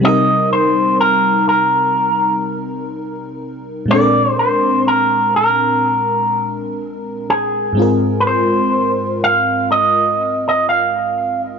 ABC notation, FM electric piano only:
X:1
M:4/4
L:1/8
Q:"Swing 16ths" 1/4=62
K:Cm
V:1 name="FM electric piano"
[C,G,CEB]8 | [B,,A,CD=AB]8 | [A,,A,CFB]8 |]